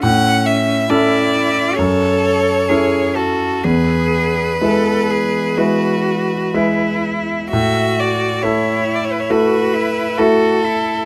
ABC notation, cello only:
X:1
M:4/4
L:1/8
Q:1/4=65
K:A
V:1 name="Cello"
C2 E2 A2 G F | G2 A G F2 E2 | F2 E2 F E F E |]